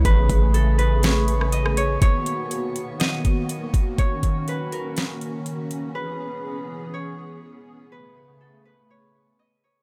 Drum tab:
HH |x-x-x-x-x-x-x-x-|x-x-x-x-x-x-x-x-|x-x-x-x-x-x-x-x-|----------------|
SD |--------o--r-r--|--------o-------|--------o-------|----------------|
BD |o-o-------------|o---------o---o-|o-o-------------|----------------|

HH |----------------|
SD |----------------|
BD |----------------|